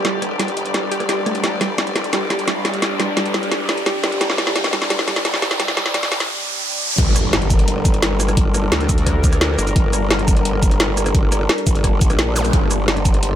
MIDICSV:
0, 0, Header, 1, 9, 480
1, 0, Start_track
1, 0, Key_signature, -2, "minor"
1, 0, Tempo, 346821
1, 66, Time_signature, 4, 2, 24, 8
1, 18486, End_track
2, 0, Start_track
2, 0, Title_t, "String section"
2, 0, Program_c, 0, 48
2, 0, Note_on_c, 0, 67, 75
2, 0, Note_on_c, 0, 74, 69
2, 8707, Note_off_c, 0, 74, 0
2, 8708, Note_off_c, 0, 67, 0
2, 18486, End_track
3, 0, Start_track
3, 0, Title_t, "Analog synth pad"
3, 0, Program_c, 1, 89
3, 0, Note_on_c, 1, 55, 81
3, 0, Note_on_c, 1, 62, 74
3, 0, Note_on_c, 1, 69, 73
3, 0, Note_on_c, 1, 70, 91
3, 1932, Note_off_c, 1, 69, 0
3, 1956, Note_off_c, 1, 70, 0
3, 1987, Note_on_c, 1, 67, 73
3, 1987, Note_on_c, 1, 74, 93
3, 9611, Note_off_c, 1, 67, 0
3, 9612, Note_off_c, 1, 55, 0
3, 9612, Note_off_c, 1, 62, 0
3, 9635, Note_off_c, 1, 74, 0
3, 9668, Note_on_c, 1, 62, 77
3, 9668, Note_on_c, 1, 70, 91
3, 9669, Note_on_c, 1, 55, 81
3, 9669, Note_on_c, 1, 69, 78
3, 17316, Note_off_c, 1, 70, 0
3, 17349, Note_on_c, 1, 72, 91
3, 18486, Note_off_c, 1, 55, 0
3, 18486, Note_off_c, 1, 62, 0
3, 18486, Note_off_c, 1, 69, 0
3, 18486, Note_off_c, 1, 72, 0
3, 18486, End_track
4, 0, Start_track
4, 0, Title_t, "Synth arpeggio sound"
4, 0, Program_c, 2, 84
4, 67, Note_on_c, 2, 55, 107
4, 170, Note_off_c, 2, 55, 0
4, 547, Note_on_c, 2, 55, 73
4, 609, Note_off_c, 2, 55, 0
4, 1027, Note_on_c, 2, 55, 83
4, 1181, Note_off_c, 2, 55, 0
4, 1266, Note_on_c, 2, 67, 96
4, 1421, Note_off_c, 2, 67, 0
4, 1507, Note_on_c, 2, 67, 104
4, 1569, Note_off_c, 2, 67, 0
4, 1747, Note_on_c, 2, 57, 78
4, 1809, Note_off_c, 2, 57, 0
4, 1987, Note_on_c, 2, 55, 87
4, 2141, Note_off_c, 2, 55, 0
4, 2227, Note_on_c, 2, 55, 80
4, 2288, Note_off_c, 2, 55, 0
4, 2947, Note_on_c, 2, 55, 106
4, 3050, Note_off_c, 2, 55, 0
4, 3186, Note_on_c, 2, 55, 77
4, 3341, Note_off_c, 2, 55, 0
4, 3427, Note_on_c, 2, 55, 79
4, 3488, Note_off_c, 2, 55, 0
4, 4146, Note_on_c, 2, 55, 105
4, 4249, Note_off_c, 2, 55, 0
4, 4385, Note_on_c, 2, 55, 78
4, 4540, Note_off_c, 2, 55, 0
4, 4626, Note_on_c, 2, 55, 75
4, 4688, Note_off_c, 2, 55, 0
4, 5346, Note_on_c, 2, 55, 98
4, 5449, Note_off_c, 2, 55, 0
4, 5586, Note_on_c, 2, 55, 79
4, 5741, Note_off_c, 2, 55, 0
4, 5826, Note_on_c, 2, 55, 86
4, 5888, Note_off_c, 2, 55, 0
4, 6546, Note_on_c, 2, 55, 97
4, 6649, Note_off_c, 2, 55, 0
4, 6786, Note_on_c, 2, 55, 84
4, 6941, Note_off_c, 2, 55, 0
4, 7026, Note_on_c, 2, 55, 76
4, 7088, Note_off_c, 2, 55, 0
4, 7746, Note_on_c, 2, 55, 102
4, 7849, Note_off_c, 2, 55, 0
4, 7987, Note_on_c, 2, 55, 79
4, 8141, Note_off_c, 2, 55, 0
4, 8226, Note_on_c, 2, 55, 74
4, 8288, Note_off_c, 2, 55, 0
4, 18486, End_track
5, 0, Start_track
5, 0, Title_t, "Wobble bass"
5, 0, Program_c, 3, 39
5, 0, Note_on_c, 3, 31, 97
5, 287, Note_off_c, 3, 31, 0
5, 306, Note_on_c, 3, 29, 95
5, 767, Note_off_c, 3, 29, 0
5, 787, Note_on_c, 3, 31, 95
5, 1488, Note_off_c, 3, 31, 0
5, 1508, Note_on_c, 3, 31, 96
5, 1968, Note_off_c, 3, 31, 0
5, 1987, Note_on_c, 3, 31, 99
5, 2688, Note_off_c, 3, 31, 0
5, 2707, Note_on_c, 3, 31, 96
5, 2928, Note_off_c, 3, 31, 0
5, 2946, Note_on_c, 3, 31, 95
5, 3407, Note_off_c, 3, 31, 0
5, 3426, Note_on_c, 3, 33, 92
5, 5327, Note_off_c, 3, 33, 0
5, 5586, Note_on_c, 3, 31, 101
5, 5807, Note_off_c, 3, 31, 0
5, 6546, Note_on_c, 3, 31, 95
5, 6767, Note_off_c, 3, 31, 0
5, 6788, Note_on_c, 3, 31, 103
5, 7248, Note_off_c, 3, 31, 0
5, 7267, Note_on_c, 3, 31, 92
5, 7968, Note_off_c, 3, 31, 0
5, 7987, Note_on_c, 3, 34, 101
5, 8448, Note_off_c, 3, 34, 0
5, 8466, Note_on_c, 3, 31, 101
5, 8707, Note_off_c, 3, 31, 0
5, 9666, Note_on_c, 3, 31, 99
5, 10127, Note_off_c, 3, 31, 0
5, 10147, Note_on_c, 3, 31, 99
5, 12047, Note_off_c, 3, 31, 0
5, 12067, Note_on_c, 3, 38, 102
5, 13248, Note_off_c, 3, 38, 0
5, 13267, Note_on_c, 3, 31, 95
5, 13487, Note_off_c, 3, 31, 0
5, 13507, Note_on_c, 3, 31, 102
5, 13967, Note_off_c, 3, 31, 0
5, 13987, Note_on_c, 3, 31, 97
5, 15888, Note_off_c, 3, 31, 0
5, 16147, Note_on_c, 3, 31, 98
5, 16607, Note_off_c, 3, 31, 0
5, 16626, Note_on_c, 3, 34, 97
5, 17327, Note_off_c, 3, 34, 0
5, 17346, Note_on_c, 3, 31, 103
5, 17807, Note_off_c, 3, 31, 0
5, 17826, Note_on_c, 3, 31, 102
5, 18486, Note_off_c, 3, 31, 0
5, 18486, End_track
6, 0, Start_track
6, 0, Title_t, "Impact"
6, 0, Program_c, 4, 103
6, 9666, Note_on_c, 4, 60, 79
6, 11587, Note_off_c, 4, 60, 0
6, 18486, End_track
7, 0, Start_track
7, 0, Title_t, "Riser"
7, 0, Program_c, 5, 103
7, 0, Note_on_c, 5, 60, 85
7, 9667, Note_off_c, 5, 60, 0
7, 18486, End_track
8, 0, Start_track
8, 0, Title_t, "Zap"
8, 0, Program_c, 6, 103
8, 17107, Note_on_c, 6, 60, 64
8, 17227, Note_off_c, 6, 60, 0
8, 18486, End_track
9, 0, Start_track
9, 0, Title_t, "Drums"
9, 66, Note_on_c, 9, 38, 66
9, 66, Note_on_c, 9, 42, 84
9, 204, Note_off_c, 9, 38, 0
9, 204, Note_off_c, 9, 42, 0
9, 306, Note_on_c, 9, 37, 43
9, 306, Note_on_c, 9, 42, 63
9, 445, Note_off_c, 9, 37, 0
9, 445, Note_off_c, 9, 42, 0
9, 546, Note_on_c, 9, 38, 68
9, 546, Note_on_c, 9, 42, 89
9, 667, Note_off_c, 9, 42, 0
9, 667, Note_on_c, 9, 42, 35
9, 685, Note_off_c, 9, 38, 0
9, 786, Note_off_c, 9, 42, 0
9, 786, Note_on_c, 9, 42, 64
9, 907, Note_off_c, 9, 42, 0
9, 907, Note_on_c, 9, 42, 36
9, 1027, Note_off_c, 9, 42, 0
9, 1027, Note_on_c, 9, 37, 48
9, 1027, Note_on_c, 9, 38, 71
9, 1027, Note_on_c, 9, 42, 92
9, 1165, Note_off_c, 9, 37, 0
9, 1165, Note_off_c, 9, 38, 0
9, 1165, Note_off_c, 9, 42, 0
9, 1267, Note_on_c, 9, 42, 59
9, 1387, Note_off_c, 9, 42, 0
9, 1387, Note_on_c, 9, 37, 53
9, 1387, Note_on_c, 9, 42, 33
9, 1507, Note_off_c, 9, 42, 0
9, 1507, Note_on_c, 9, 38, 75
9, 1507, Note_on_c, 9, 42, 95
9, 1525, Note_off_c, 9, 37, 0
9, 1646, Note_off_c, 9, 38, 0
9, 1646, Note_off_c, 9, 42, 0
9, 1747, Note_on_c, 9, 37, 48
9, 1747, Note_on_c, 9, 42, 64
9, 1867, Note_off_c, 9, 42, 0
9, 1867, Note_on_c, 9, 42, 36
9, 1886, Note_off_c, 9, 37, 0
9, 1987, Note_off_c, 9, 42, 0
9, 1987, Note_on_c, 9, 38, 71
9, 1987, Note_on_c, 9, 42, 86
9, 2125, Note_off_c, 9, 38, 0
9, 2125, Note_off_c, 9, 42, 0
9, 2227, Note_on_c, 9, 38, 71
9, 2227, Note_on_c, 9, 42, 61
9, 2365, Note_off_c, 9, 38, 0
9, 2365, Note_off_c, 9, 42, 0
9, 2467, Note_on_c, 9, 38, 77
9, 2467, Note_on_c, 9, 42, 87
9, 2587, Note_off_c, 9, 42, 0
9, 2587, Note_on_c, 9, 42, 34
9, 2605, Note_off_c, 9, 38, 0
9, 2707, Note_off_c, 9, 42, 0
9, 2707, Note_on_c, 9, 38, 77
9, 2707, Note_on_c, 9, 42, 60
9, 2826, Note_off_c, 9, 42, 0
9, 2826, Note_on_c, 9, 42, 35
9, 2845, Note_off_c, 9, 38, 0
9, 2947, Note_off_c, 9, 42, 0
9, 2947, Note_on_c, 9, 38, 80
9, 2947, Note_on_c, 9, 42, 92
9, 3085, Note_off_c, 9, 38, 0
9, 3085, Note_off_c, 9, 42, 0
9, 3187, Note_on_c, 9, 38, 78
9, 3187, Note_on_c, 9, 42, 59
9, 3307, Note_off_c, 9, 42, 0
9, 3307, Note_on_c, 9, 42, 34
9, 3325, Note_off_c, 9, 38, 0
9, 3427, Note_off_c, 9, 42, 0
9, 3427, Note_on_c, 9, 38, 83
9, 3427, Note_on_c, 9, 42, 93
9, 3565, Note_off_c, 9, 38, 0
9, 3565, Note_off_c, 9, 42, 0
9, 3666, Note_on_c, 9, 38, 78
9, 3666, Note_on_c, 9, 42, 66
9, 3786, Note_off_c, 9, 42, 0
9, 3786, Note_on_c, 9, 42, 36
9, 3805, Note_off_c, 9, 38, 0
9, 3906, Note_off_c, 9, 42, 0
9, 3906, Note_on_c, 9, 38, 84
9, 3906, Note_on_c, 9, 42, 89
9, 4044, Note_off_c, 9, 38, 0
9, 4044, Note_off_c, 9, 42, 0
9, 4146, Note_on_c, 9, 38, 81
9, 4146, Note_on_c, 9, 42, 69
9, 4284, Note_off_c, 9, 38, 0
9, 4284, Note_off_c, 9, 42, 0
9, 4385, Note_on_c, 9, 38, 87
9, 4385, Note_on_c, 9, 42, 90
9, 4506, Note_off_c, 9, 42, 0
9, 4506, Note_on_c, 9, 42, 35
9, 4524, Note_off_c, 9, 38, 0
9, 4625, Note_off_c, 9, 42, 0
9, 4625, Note_on_c, 9, 38, 85
9, 4625, Note_on_c, 9, 42, 65
9, 4745, Note_off_c, 9, 42, 0
9, 4745, Note_on_c, 9, 42, 35
9, 4764, Note_off_c, 9, 38, 0
9, 4865, Note_off_c, 9, 42, 0
9, 4865, Note_on_c, 9, 38, 89
9, 4865, Note_on_c, 9, 42, 91
9, 5004, Note_off_c, 9, 38, 0
9, 5004, Note_off_c, 9, 42, 0
9, 5105, Note_on_c, 9, 38, 88
9, 5105, Note_on_c, 9, 42, 67
9, 5225, Note_off_c, 9, 42, 0
9, 5225, Note_on_c, 9, 42, 35
9, 5244, Note_off_c, 9, 38, 0
9, 5346, Note_off_c, 9, 42, 0
9, 5346, Note_on_c, 9, 38, 96
9, 5346, Note_on_c, 9, 42, 99
9, 5484, Note_off_c, 9, 38, 0
9, 5484, Note_off_c, 9, 42, 0
9, 5586, Note_on_c, 9, 38, 91
9, 5586, Note_on_c, 9, 42, 68
9, 5706, Note_off_c, 9, 42, 0
9, 5706, Note_on_c, 9, 42, 37
9, 5724, Note_off_c, 9, 38, 0
9, 5826, Note_off_c, 9, 42, 0
9, 5826, Note_on_c, 9, 38, 91
9, 5826, Note_on_c, 9, 42, 92
9, 5946, Note_off_c, 9, 38, 0
9, 5946, Note_on_c, 9, 38, 80
9, 5964, Note_off_c, 9, 42, 0
9, 6066, Note_off_c, 9, 38, 0
9, 6066, Note_on_c, 9, 38, 91
9, 6066, Note_on_c, 9, 42, 66
9, 6186, Note_off_c, 9, 38, 0
9, 6186, Note_on_c, 9, 38, 89
9, 6204, Note_off_c, 9, 42, 0
9, 6306, Note_off_c, 9, 38, 0
9, 6306, Note_on_c, 9, 38, 96
9, 6306, Note_on_c, 9, 42, 94
9, 6426, Note_off_c, 9, 38, 0
9, 6426, Note_off_c, 9, 42, 0
9, 6426, Note_on_c, 9, 38, 75
9, 6426, Note_on_c, 9, 42, 36
9, 6546, Note_off_c, 9, 38, 0
9, 6546, Note_off_c, 9, 42, 0
9, 6546, Note_on_c, 9, 38, 101
9, 6546, Note_on_c, 9, 42, 67
9, 6666, Note_off_c, 9, 38, 0
9, 6666, Note_off_c, 9, 42, 0
9, 6666, Note_on_c, 9, 38, 84
9, 6666, Note_on_c, 9, 42, 39
9, 6786, Note_off_c, 9, 38, 0
9, 6786, Note_off_c, 9, 42, 0
9, 6786, Note_on_c, 9, 38, 105
9, 6786, Note_on_c, 9, 42, 102
9, 6906, Note_off_c, 9, 38, 0
9, 6906, Note_on_c, 9, 38, 85
9, 6924, Note_off_c, 9, 42, 0
9, 7026, Note_off_c, 9, 38, 0
9, 7026, Note_on_c, 9, 38, 89
9, 7026, Note_on_c, 9, 42, 68
9, 7146, Note_off_c, 9, 38, 0
9, 7146, Note_off_c, 9, 42, 0
9, 7146, Note_on_c, 9, 38, 85
9, 7146, Note_on_c, 9, 42, 36
9, 7266, Note_off_c, 9, 38, 0
9, 7266, Note_off_c, 9, 42, 0
9, 7266, Note_on_c, 9, 38, 99
9, 7266, Note_on_c, 9, 42, 99
9, 7386, Note_off_c, 9, 38, 0
9, 7386, Note_on_c, 9, 38, 82
9, 7404, Note_off_c, 9, 42, 0
9, 7505, Note_off_c, 9, 38, 0
9, 7505, Note_on_c, 9, 38, 102
9, 7505, Note_on_c, 9, 42, 67
9, 7626, Note_off_c, 9, 38, 0
9, 7626, Note_off_c, 9, 42, 0
9, 7626, Note_on_c, 9, 38, 91
9, 7626, Note_on_c, 9, 42, 40
9, 7745, Note_off_c, 9, 38, 0
9, 7745, Note_off_c, 9, 42, 0
9, 7745, Note_on_c, 9, 38, 97
9, 7745, Note_on_c, 9, 42, 101
9, 7865, Note_off_c, 9, 38, 0
9, 7865, Note_on_c, 9, 38, 85
9, 7884, Note_off_c, 9, 42, 0
9, 7986, Note_off_c, 9, 38, 0
9, 7986, Note_on_c, 9, 38, 104
9, 7986, Note_on_c, 9, 42, 68
9, 8106, Note_off_c, 9, 38, 0
9, 8106, Note_on_c, 9, 38, 95
9, 8124, Note_off_c, 9, 42, 0
9, 8225, Note_off_c, 9, 38, 0
9, 8225, Note_on_c, 9, 38, 103
9, 8225, Note_on_c, 9, 42, 98
9, 8346, Note_off_c, 9, 38, 0
9, 8346, Note_off_c, 9, 42, 0
9, 8346, Note_on_c, 9, 38, 84
9, 8346, Note_on_c, 9, 42, 36
9, 8465, Note_off_c, 9, 38, 0
9, 8465, Note_off_c, 9, 42, 0
9, 8465, Note_on_c, 9, 38, 109
9, 8465, Note_on_c, 9, 42, 72
9, 8585, Note_off_c, 9, 38, 0
9, 8585, Note_off_c, 9, 42, 0
9, 8585, Note_on_c, 9, 38, 95
9, 8585, Note_on_c, 9, 42, 39
9, 8724, Note_off_c, 9, 38, 0
9, 8724, Note_off_c, 9, 42, 0
9, 9666, Note_on_c, 9, 36, 118
9, 9666, Note_on_c, 9, 42, 93
9, 9666, Note_on_c, 9, 49, 98
9, 9804, Note_off_c, 9, 36, 0
9, 9804, Note_off_c, 9, 42, 0
9, 9804, Note_off_c, 9, 49, 0
9, 9906, Note_on_c, 9, 37, 50
9, 9906, Note_on_c, 9, 42, 69
9, 9906, Note_on_c, 9, 82, 61
9, 10044, Note_off_c, 9, 37, 0
9, 10044, Note_off_c, 9, 42, 0
9, 10044, Note_off_c, 9, 82, 0
9, 10146, Note_on_c, 9, 38, 124
9, 10146, Note_on_c, 9, 42, 95
9, 10266, Note_off_c, 9, 42, 0
9, 10266, Note_on_c, 9, 42, 36
9, 10284, Note_off_c, 9, 38, 0
9, 10385, Note_off_c, 9, 42, 0
9, 10385, Note_on_c, 9, 42, 68
9, 10385, Note_on_c, 9, 82, 59
9, 10386, Note_on_c, 9, 36, 104
9, 10506, Note_off_c, 9, 42, 0
9, 10506, Note_on_c, 9, 42, 39
9, 10524, Note_off_c, 9, 36, 0
9, 10524, Note_off_c, 9, 82, 0
9, 10626, Note_off_c, 9, 42, 0
9, 10626, Note_on_c, 9, 42, 106
9, 10764, Note_off_c, 9, 42, 0
9, 10866, Note_on_c, 9, 36, 105
9, 10866, Note_on_c, 9, 42, 67
9, 10866, Note_on_c, 9, 82, 57
9, 10986, Note_off_c, 9, 42, 0
9, 10986, Note_on_c, 9, 42, 38
9, 11004, Note_off_c, 9, 36, 0
9, 11005, Note_off_c, 9, 82, 0
9, 11106, Note_off_c, 9, 42, 0
9, 11106, Note_on_c, 9, 38, 121
9, 11106, Note_on_c, 9, 42, 97
9, 11245, Note_off_c, 9, 38, 0
9, 11245, Note_off_c, 9, 42, 0
9, 11346, Note_on_c, 9, 37, 51
9, 11346, Note_on_c, 9, 42, 70
9, 11346, Note_on_c, 9, 82, 64
9, 11466, Note_off_c, 9, 37, 0
9, 11466, Note_off_c, 9, 42, 0
9, 11466, Note_off_c, 9, 82, 0
9, 11466, Note_on_c, 9, 37, 61
9, 11466, Note_on_c, 9, 42, 38
9, 11466, Note_on_c, 9, 82, 28
9, 11586, Note_off_c, 9, 42, 0
9, 11586, Note_on_c, 9, 36, 126
9, 11586, Note_on_c, 9, 42, 91
9, 11605, Note_off_c, 9, 37, 0
9, 11605, Note_off_c, 9, 82, 0
9, 11724, Note_off_c, 9, 36, 0
9, 11724, Note_off_c, 9, 42, 0
9, 11826, Note_on_c, 9, 37, 51
9, 11826, Note_on_c, 9, 42, 70
9, 11826, Note_on_c, 9, 82, 57
9, 11964, Note_off_c, 9, 37, 0
9, 11964, Note_off_c, 9, 42, 0
9, 11964, Note_off_c, 9, 82, 0
9, 12067, Note_on_c, 9, 38, 127
9, 12067, Note_on_c, 9, 42, 100
9, 12186, Note_off_c, 9, 42, 0
9, 12186, Note_on_c, 9, 42, 35
9, 12205, Note_off_c, 9, 38, 0
9, 12306, Note_on_c, 9, 36, 108
9, 12307, Note_off_c, 9, 42, 0
9, 12307, Note_on_c, 9, 42, 67
9, 12307, Note_on_c, 9, 82, 58
9, 12427, Note_off_c, 9, 42, 0
9, 12427, Note_on_c, 9, 42, 41
9, 12445, Note_off_c, 9, 36, 0
9, 12445, Note_off_c, 9, 82, 0
9, 12546, Note_off_c, 9, 42, 0
9, 12546, Note_on_c, 9, 36, 64
9, 12546, Note_on_c, 9, 37, 51
9, 12546, Note_on_c, 9, 42, 96
9, 12685, Note_off_c, 9, 36, 0
9, 12685, Note_off_c, 9, 37, 0
9, 12685, Note_off_c, 9, 42, 0
9, 12786, Note_on_c, 9, 36, 110
9, 12786, Note_on_c, 9, 42, 66
9, 12786, Note_on_c, 9, 82, 56
9, 12906, Note_off_c, 9, 42, 0
9, 12906, Note_off_c, 9, 82, 0
9, 12906, Note_on_c, 9, 37, 56
9, 12906, Note_on_c, 9, 42, 39
9, 12906, Note_on_c, 9, 82, 27
9, 12925, Note_off_c, 9, 36, 0
9, 13026, Note_off_c, 9, 42, 0
9, 13026, Note_on_c, 9, 38, 127
9, 13026, Note_on_c, 9, 42, 96
9, 13045, Note_off_c, 9, 37, 0
9, 13045, Note_off_c, 9, 82, 0
9, 13164, Note_off_c, 9, 38, 0
9, 13164, Note_off_c, 9, 42, 0
9, 13266, Note_on_c, 9, 37, 54
9, 13266, Note_on_c, 9, 42, 70
9, 13266, Note_on_c, 9, 82, 59
9, 13386, Note_off_c, 9, 42, 0
9, 13386, Note_off_c, 9, 82, 0
9, 13386, Note_on_c, 9, 42, 39
9, 13386, Note_on_c, 9, 82, 27
9, 13405, Note_off_c, 9, 37, 0
9, 13506, Note_off_c, 9, 42, 0
9, 13506, Note_on_c, 9, 36, 125
9, 13506, Note_on_c, 9, 42, 87
9, 13524, Note_off_c, 9, 82, 0
9, 13644, Note_off_c, 9, 36, 0
9, 13645, Note_off_c, 9, 42, 0
9, 13746, Note_on_c, 9, 37, 50
9, 13746, Note_on_c, 9, 42, 61
9, 13746, Note_on_c, 9, 82, 58
9, 13884, Note_off_c, 9, 37, 0
9, 13884, Note_off_c, 9, 42, 0
9, 13884, Note_off_c, 9, 82, 0
9, 13986, Note_on_c, 9, 38, 127
9, 13986, Note_on_c, 9, 42, 88
9, 14106, Note_off_c, 9, 42, 0
9, 14106, Note_on_c, 9, 42, 34
9, 14124, Note_off_c, 9, 38, 0
9, 14226, Note_off_c, 9, 42, 0
9, 14226, Note_on_c, 9, 36, 107
9, 14226, Note_on_c, 9, 42, 62
9, 14226, Note_on_c, 9, 82, 57
9, 14346, Note_off_c, 9, 42, 0
9, 14346, Note_on_c, 9, 42, 37
9, 14364, Note_off_c, 9, 36, 0
9, 14365, Note_off_c, 9, 82, 0
9, 14467, Note_off_c, 9, 42, 0
9, 14467, Note_on_c, 9, 42, 94
9, 14605, Note_off_c, 9, 42, 0
9, 14706, Note_on_c, 9, 36, 106
9, 14707, Note_on_c, 9, 42, 61
9, 14707, Note_on_c, 9, 82, 52
9, 14827, Note_off_c, 9, 42, 0
9, 14827, Note_on_c, 9, 42, 36
9, 14844, Note_off_c, 9, 36, 0
9, 14845, Note_off_c, 9, 82, 0
9, 14946, Note_off_c, 9, 42, 0
9, 14946, Note_on_c, 9, 38, 127
9, 14946, Note_on_c, 9, 42, 92
9, 15085, Note_off_c, 9, 38, 0
9, 15085, Note_off_c, 9, 42, 0
9, 15186, Note_on_c, 9, 37, 52
9, 15186, Note_on_c, 9, 42, 66
9, 15186, Note_on_c, 9, 82, 57
9, 15306, Note_off_c, 9, 37, 0
9, 15306, Note_off_c, 9, 42, 0
9, 15306, Note_off_c, 9, 82, 0
9, 15306, Note_on_c, 9, 37, 59
9, 15306, Note_on_c, 9, 42, 38
9, 15306, Note_on_c, 9, 82, 27
9, 15426, Note_off_c, 9, 42, 0
9, 15426, Note_on_c, 9, 36, 118
9, 15426, Note_on_c, 9, 42, 87
9, 15445, Note_off_c, 9, 37, 0
9, 15445, Note_off_c, 9, 82, 0
9, 15565, Note_off_c, 9, 36, 0
9, 15565, Note_off_c, 9, 42, 0
9, 15666, Note_on_c, 9, 37, 47
9, 15666, Note_on_c, 9, 42, 62
9, 15666, Note_on_c, 9, 82, 56
9, 15805, Note_off_c, 9, 37, 0
9, 15805, Note_off_c, 9, 42, 0
9, 15805, Note_off_c, 9, 82, 0
9, 15907, Note_on_c, 9, 38, 124
9, 15907, Note_on_c, 9, 42, 93
9, 16027, Note_off_c, 9, 42, 0
9, 16027, Note_on_c, 9, 42, 33
9, 16045, Note_off_c, 9, 38, 0
9, 16146, Note_on_c, 9, 36, 109
9, 16147, Note_off_c, 9, 42, 0
9, 16147, Note_on_c, 9, 42, 64
9, 16147, Note_on_c, 9, 82, 58
9, 16267, Note_off_c, 9, 42, 0
9, 16267, Note_on_c, 9, 42, 34
9, 16285, Note_off_c, 9, 36, 0
9, 16286, Note_off_c, 9, 82, 0
9, 16386, Note_on_c, 9, 36, 64
9, 16387, Note_off_c, 9, 42, 0
9, 16387, Note_on_c, 9, 37, 48
9, 16387, Note_on_c, 9, 42, 91
9, 16525, Note_off_c, 9, 36, 0
9, 16525, Note_off_c, 9, 37, 0
9, 16525, Note_off_c, 9, 42, 0
9, 16626, Note_on_c, 9, 36, 116
9, 16627, Note_on_c, 9, 42, 63
9, 16627, Note_on_c, 9, 82, 57
9, 16747, Note_off_c, 9, 42, 0
9, 16747, Note_off_c, 9, 82, 0
9, 16747, Note_on_c, 9, 37, 57
9, 16747, Note_on_c, 9, 42, 35
9, 16747, Note_on_c, 9, 82, 26
9, 16765, Note_off_c, 9, 36, 0
9, 16866, Note_off_c, 9, 42, 0
9, 16866, Note_on_c, 9, 38, 121
9, 16866, Note_on_c, 9, 42, 91
9, 16885, Note_off_c, 9, 37, 0
9, 16885, Note_off_c, 9, 82, 0
9, 17005, Note_off_c, 9, 38, 0
9, 17005, Note_off_c, 9, 42, 0
9, 17107, Note_on_c, 9, 37, 49
9, 17107, Note_on_c, 9, 42, 64
9, 17107, Note_on_c, 9, 82, 60
9, 17226, Note_off_c, 9, 42, 0
9, 17226, Note_off_c, 9, 82, 0
9, 17226, Note_on_c, 9, 42, 34
9, 17226, Note_on_c, 9, 82, 29
9, 17245, Note_off_c, 9, 37, 0
9, 17346, Note_off_c, 9, 42, 0
9, 17346, Note_on_c, 9, 36, 115
9, 17346, Note_on_c, 9, 42, 86
9, 17365, Note_off_c, 9, 82, 0
9, 17484, Note_off_c, 9, 42, 0
9, 17485, Note_off_c, 9, 36, 0
9, 17586, Note_on_c, 9, 37, 45
9, 17586, Note_on_c, 9, 42, 64
9, 17586, Note_on_c, 9, 82, 60
9, 17724, Note_off_c, 9, 37, 0
9, 17724, Note_off_c, 9, 42, 0
9, 17724, Note_off_c, 9, 82, 0
9, 17826, Note_on_c, 9, 38, 126
9, 17826, Note_on_c, 9, 42, 91
9, 17946, Note_off_c, 9, 42, 0
9, 17946, Note_on_c, 9, 42, 32
9, 17964, Note_off_c, 9, 38, 0
9, 18066, Note_off_c, 9, 42, 0
9, 18066, Note_on_c, 9, 36, 103
9, 18066, Note_on_c, 9, 42, 62
9, 18066, Note_on_c, 9, 82, 59
9, 18186, Note_off_c, 9, 42, 0
9, 18186, Note_on_c, 9, 42, 36
9, 18204, Note_off_c, 9, 82, 0
9, 18205, Note_off_c, 9, 36, 0
9, 18306, Note_off_c, 9, 42, 0
9, 18306, Note_on_c, 9, 42, 94
9, 18445, Note_off_c, 9, 42, 0
9, 18486, End_track
0, 0, End_of_file